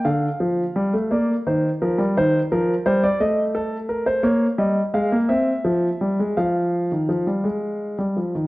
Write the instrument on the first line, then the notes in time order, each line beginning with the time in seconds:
grand piano
0.05 D3 F5
0.40 F3
0.76 G3
0.94 A3
1.11 A#3 D5
1.47 D#3 C5
1.82 F3 A#4
1.98 G3
2.17 D#3 C5
2.52 F3 A#4
2.86 G3 C5
3.04 D5
3.20 A3 D#5
3.55 A4
3.89 A#4
4.06 C5
4.23 A#3 C#5
4.58 G3 D#5
4.94 G#3 F5
5.12 A#3
5.29 C4 E5
5.65 F3
6.01 G3
6.19 G#3
6.37 F3 F5
6.92 D#3
7.09 F3
7.27 G3
7.44 G#3
7.99 G3
8.17 F3
8.35 D#3